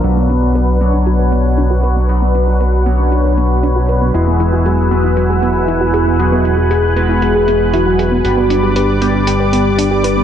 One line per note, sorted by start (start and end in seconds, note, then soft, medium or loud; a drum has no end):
0.00 0.78 F#3 medium
0.00 0.78 B3 medium
0.00 4.10 D4 medium
0.00 0.78 D4 medium
0.00 0.78 F#4 medium
0.00 0.78 B4 medium
0.00 10.24 B4 medium
0.00 4.10 F#5 medium
0.00 closed hi-hat medium
0.04 4.12 B1 medium
0.17 0.24 B3 medium
0.30 0.37 D4 medium
0.30 closed hi-hat medium
0.42 0.50 F#4 medium
0.55 0.66 B4 medium
0.55 closed hi-hat medium
0.81 2.06 F#3 medium
0.81 2.06 B3 medium
0.81 0.88 B3 medium
0.81 2.06 D4 medium
0.81 2.06 F#4 medium
0.81 2.06 C#5 loud
0.81 closed hi-hat medium
0.93 1.01 D4 medium
1.06 1.14 F#4 medium
1.06 closed hi-hat medium
1.19 1.27 B4 medium
1.32 1.39 B3 medium
1.32 closed hi-hat medium
1.58 1.69 D4 loud
1.58 closed hi-hat medium
1.71 1.81 F#4 medium
1.83 1.94 B4 medium
1.83 closed hi-hat medium
1.96 2.07 B3 medium
2.09 2.83 F#3 medium
2.09 2.83 B3 medium
2.09 2.83 D4 medium
2.09 2.83 F#4 medium
2.09 2.83 B4 loud
2.09 closed hi-hat medium
2.22 2.29 B3 medium
2.35 2.42 D4 medium
2.35 closed hi-hat medium
2.48 2.55 F#4 medium
2.60 2.71 B4 medium
2.60 closed hi-hat medium
2.86 4.11 F#3 medium
2.86 4.11 B3 medium
2.86 2.93 B3 medium
2.86 4.11 D4 medium
2.86 4.11 F#4 medium
2.86 4.11 C#5 loud
2.86 closed hi-hat medium
2.99 3.06 D4 medium
3.12 3.19 F#4 medium
3.12 closed hi-hat medium
3.25 3.32 B4 medium
3.38 3.45 B3 medium
3.38 closed hi-hat medium
3.63 3.74 D4 loud
3.63 closed hi-hat medium
3.76 3.87 F#4 loud
3.89 4.00 B4 medium
3.89 closed hi-hat medium
4.02 4.12 B3 medium
4.14 8.22 E1 medium
4.14 4.88 G#3 medium
4.14 4.88 B3 medium
4.14 4.88 E4 medium
4.14 4.67 E4 loud
4.14 4.88 F#4 medium
4.14 4.88 G#4 medium
4.14 8.21 F#5 medium
4.14 8.21 G#5 medium
4.14 6.17 E6 medium
4.14 closed hi-hat medium
4.27 4.34 B3 medium
4.40 4.47 E4 medium
4.40 closed hi-hat medium
4.53 4.60 F#4 medium
4.66 5.16 F#4 loud
4.66 4.77 G#4 medium
4.66 closed hi-hat medium
4.91 6.16 G#3 medium
4.91 6.16 B3 medium
4.91 4.98 B3 medium
4.91 6.16 E4 medium
4.91 6.16 F#4 medium
4.91 6.16 B4 loud
4.91 closed hi-hat medium
5.04 5.11 E4 medium
5.17 5.70 F#4 loud
5.17 5.24 F#4 medium
5.17 closed hi-hat medium
5.30 5.37 G#4 medium
5.42 5.50 B3 medium
5.42 closed hi-hat medium
5.68 5.79 E4 loud
5.68 6.21 E4 loud
5.68 closed hi-hat medium
5.81 5.92 F#4 loud
5.94 6.05 G#4 medium
5.94 closed hi-hat medium
6.07 6.17 B3 medium
6.19 6.93 G#3 medium
6.19 6.93 B3 medium
6.19 6.93 E4 medium
6.19 6.72 F#4 loud
6.19 6.93 F#4 medium
6.19 6.93 G#4 loud
6.19 8.22 F#6 medium
6.19 closed hi-hat medium
6.32 6.39 B3 medium
6.45 6.52 E4 medium
6.45 closed hi-hat medium
6.58 6.65 F#4 medium
6.70 7.21 G#4 loud
6.70 6.81 G#4 medium
6.70 closed hi-hat medium
6.96 8.21 G#3 medium
6.96 8.21 B3 medium
6.96 7.04 B3 medium
6.96 8.21 E4 medium
6.96 8.21 F#4 medium
6.96 8.21 B4 loud
6.96 closed hi-hat medium
7.09 7.16 E4 medium
7.22 7.29 F#4 medium
7.22 7.75 G#4 loud
7.22 closed hi-hat medium
7.35 7.42 G#4 medium
7.48 7.55 B3 medium
7.48 closed hi-hat medium
7.73 7.84 E4 loud
7.73 8.24 F#4 loud
7.73 closed hi-hat medium
7.86 7.97 F#4 loud
7.99 8.10 G#4 loud
7.99 closed hi-hat medium
8.12 8.23 B3 medium
8.24 10.24 G1 medium
8.24 8.98 G3 medium
8.24 8.98 B3 medium
8.24 8.98 D4 medium
8.24 8.77 F#4 loud
8.24 8.98 B4 loud
8.24 10.24 D5 medium
8.24 10.24 D6 medium
8.24 closed hi-hat medium
8.37 8.45 B3 medium
8.50 8.57 D4 medium
8.50 closed hi-hat medium
8.63 8.70 G4 medium
8.76 9.27 G4 loud
8.76 8.87 B4 medium
8.76 closed hi-hat medium
9.01 10.24 G3 medium
9.01 10.24 B3 medium
9.01 9.09 B3 medium
9.01 10.24 D4 medium
9.01 10.24 G4 medium
9.01 10.24 D5 loud
9.01 closed hi-hat medium
9.14 9.22 D4 medium
9.27 9.34 G4 medium
9.27 10.06 G4 loud
9.27 closed hi-hat medium
9.40 9.47 B4 medium
9.53 9.60 B3 medium
9.53 closed hi-hat medium
9.78 9.89 D4 loud
9.78 closed hi-hat medium
9.91 10.02 G4 loud
10.04 10.24 D4 medium
10.04 10.15 B4 loud
10.04 closed hi-hat medium
10.17 10.24 B3 medium